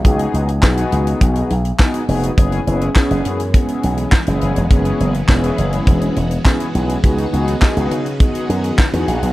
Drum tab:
HH |xxxx-xxxxxxx-xox|xxxx-xxxxxxx-xxx|xxxx-xxxxxxx-xxx|xxxx-xxxxxxx-xxx|
CP |----x-------x---|----x-------x---|----x-------x---|----x-------x---|
SD |----o-------o---|----o-------o---|----o-------o---|----o-------o---|
BD |o---o---o---o---|o---o---o---o---|o---o---o---o---|o---o---o---o---|